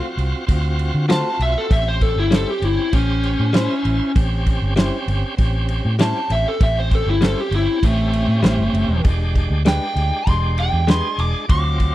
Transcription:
Already playing: tonewheel organ C4 F4 F#4
0.17 fingered electric bass C2, ride
0.47 fingered electric bass D2, tonewheel organ C4 F4 F#4, kick, ride
0.79 ride
0.94 fingered electric bass D3
1.08 clean electric guitar A3 F4 F#4 C5, tonewheel organ C4 F4 F#4, lead electric guitar A5, snare, ride
1.39 fingered electric bass B1, lead electric guitar E5, ride
1.58 lead electric guitar A4
1.69 fingered electric bass A1, tonewheel organ C4 C#4 G4, lead electric guitar E5, kick, ride
1.88 lead electric guitar C5
2.01 lead electric guitar A4, kick, ride
2.16 fingered electric bass G1, lead electric guitar E4
2.31 clean electric guitar G3 C#4 E4 C5, tonewheel organ C4 C#4 G4, lead electric guitar A4, snare, ride
2.50 lead electric guitar G4
2.62 fingered electric bass G1, lead electric guitar E4, ride
2.91 fingered electric bass A1, tonewheel organ C#4 G4 C5, lead electric guitar C#4, kick, ride
3.24 ride
3.39 fingered electric bass A2
3.53 clean electric guitar G3 C#4 E4 C5, tonewheel organ C#4 E4 C5, snare, ride
3.85 fingered electric bass A1, ride
4.15 fingered electric bass A1, tonewheel organ C4 C#4 G4, kick, ride
4.46 kick, ride
4.62 fingered electric bass G1
4.76 clean electric guitar G3 C#4 E4 C5, tonewheel organ C4 C#4 G4, snare, ride
5.08 fingered electric bass G1, ride
5.37 fingered electric bass A1, tonewheel organ C4 C#4 G4, kick, ride
5.69 ride
5.85 fingered electric bass A2
5.99 clean electric guitar G3 C#4 E4 C5, tonewheel organ C4 C#4 G4, lead electric guitar A5, snare, ride
6.30 fingered electric bass A1, lead electric guitar E5, ride
6.48 lead electric guitar A4
6.60 fingered electric bass A1, tonewheel organ C4 C#4 G4, lead electric guitar E5, kick, ride
6.80 lead electric guitar C5
6.91 lead electric guitar A4, kick, ride
7.06 fingered electric bass G1, lead electric guitar E4
7.21 clean electric guitar G3 C#4 E4 C5, tonewheel organ C4 C#4 G4, lead electric guitar A4, snare, ride
7.40 lead electric guitar G4
7.51 fingered electric bass G1, ride
7.55 lead electric guitar E4
7.83 fingered electric bass A1, lead electric guitar A3, tonewheel organ C4 C#4 G4, kick, ride
8.13 ride
8.28 fingered electric bass A2
8.42 fingered electric bass A1, clean electric guitar G3 C#4 E4 C5, tonewheel organ C4 C#4 G4, snare, ride
8.58 fingered electric bass G1
8.73 fingered electric bass F#1, ride
8.88 fingered electric bass E1
9.04 fingered electric bass E1, tonewheel organ G#3 D4 G4, kick, ride
9.35 kick, ride
9.50 fingered electric bass D2
9.65 tonewheel organ G#3 D4 G4, clean electric guitar G#3 D4 G4 B4, lead electric guitar G5, snare, ride
9.96 fingered electric bass D2, ride
10.26 fingered electric bass E1, tonewheel organ G#3 D4 G4, lead electric guitar C6, kick, ride
10.58 lead electric guitar G5, ride
10.73 fingered electric bass E2
10.87 tonewheel organ G#3 D4 G#4, clean electric guitar G#3 D4 G4 B4, lead electric guitar C6, snare, ride
11.18 fingered electric bass E1, lead electric guitar D6, ride
11.49 fingered electric bass D2, tonewheel organ F#3 C4 F4, lead electric guitar D6, kick, ride
11.80 kick, ride

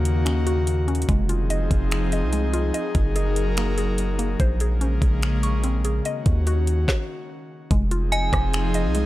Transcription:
Already playing: 808-style bass D#2, analog synth pad C#3 D#3 A#3 F#4, synth pluck F#4 D#5
0.05 closed hi-hat
0.25 synth pluck C#4, finger snap, closed hi-hat
0.47 synth pluck F#4, closed hi-hat
0.67 closed hi-hat
0.88 synth pluck C#4, closed hi-hat
0.95 closed hi-hat
1.02 closed hi-hat
1.09 808-style bass F1, analog synth pad F3 C4 D#4 G#4, synth pluck G#3, kick, closed hi-hat
1.29 synth pluck F4, closed hi-hat
1.50 synth pluck D#5, closed hi-hat
1.71 808-style bass F1, kick, closed hi-hat
1.91 finger snap, closed hi-hat
2.12 synth pluck D#5, closed hi-hat
2.23 808-style bass C2
2.33 synth pluck G#3, closed hi-hat
2.53 synth pluck F4, closed hi-hat
2.74 analog synth pad F#3 A#4, synth pluck D#5, closed hi-hat
2.95 808-style bass F#1, kick, closed hi-hat
3.16 synth pluck G#4, closed hi-hat
3.36 closed hi-hat
3.57 synth pluck A#3, finger snap, closed hi-hat
3.78 synth pluck G#4, closed hi-hat
3.98 closed hi-hat
4.19 synth pluck A#3, closed hi-hat
4.40 808-style bass A#1, analog synth pad C#3 G#3 A#3, synth pluck C5, kick, closed hi-hat
4.60 synth pluck G#4, closed hi-hat
4.81 synth pluck C#4, closed hi-hat
5.02 808-style bass A#1, kick, closed hi-hat
5.22 finger snap, closed hi-hat
5.43 synth pluck C#6, closed hi-hat
5.64 synth pluck C4, closed hi-hat
5.85 synth pluck G#4, closed hi-hat
6.05 analog synth pad D#3 C#4 F#4, synth pluck D#5, closed hi-hat
6.26 808-style bass D#2, kick, closed hi-hat
6.47 synth pluck F#4, closed hi-hat
6.67 closed hi-hat
6.88 kick, snare
7.71 808-style bass F1, analog synth pad F3 C4 D#4 G#4, synth pluck G#3, kick, closed hi-hat
7.91 synth pluck F4, closed hi-hat
8.12 synth pluck D#5, synth bell G#5, closed hi-hat
8.33 808-style bass F1, kick, cross-stick, closed hi-hat
8.54 finger snap, closed hi-hat
8.74 synth pluck D#5, closed hi-hat
8.85 808-style bass C2
8.95 synth pluck G#3, closed hi-hat

